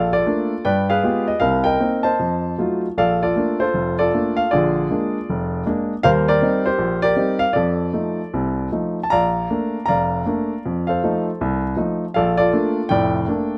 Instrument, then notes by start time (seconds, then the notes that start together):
grand piano
Already playing: A#1 A4 D5 F5
0.13 F4 A4 D5
0.26 A3 A#3 D4
0.65 G2 B4 D5 G5
0.90 G#4 B4 F5
1.03 G#3 B3 F4 G4
1.28 D#5
1.40 C2 C3 A#4 F5
1.64 A#4 D#5 G5
1.80 A#3 C4 D#4
2.03 C5 D#5 A5
2.19 F2
2.58 F#3 A3 D#4 F4
2.98 A#1 A4 D5 F5
3.22 F4 A4 D5
3.36 A3 A#3 D4
3.60 F4 A4 C5
3.74 F1
3.99 F4 A4 D5
4.14 A3 A#3 D4
4.37 F5
4.51 A#1 D3 F4 G#4 D5
4.91 G#3 A#3 D4
5.29 F1
5.66 G#3 A#3 D4
6.03 D#2 G3 A#4 C5 F5
6.28 G4 A#4 D5
6.42 G3 C4 D#4
6.66 G4 C5
6.79 A#1
7.02 G4 A#4 D5
7.17 G3 C4 D#4
7.39 F5
7.53 F2 A4 D5
7.93 F3 A3 D#4
8.34 C2 C3
8.72 F3 A3 D#4
9.03 A5
9.10 A#1 D5 F5 A#5
9.50 A3 A#3 D4
9.86 F1 D5 F5 A#5
10.26 A3 A#3 D4
10.66 F2
10.87 A4 C5 F5
11.03 F3 A3 D#4
11.41 C2
11.76 F3 A3 D#4
12.14 A#1 A4 D5 F5
12.37 F4 A4 D5
12.53 A3 A#3 D4
12.89 F1 A2 D5 G5
13.28 A3 A#3 D4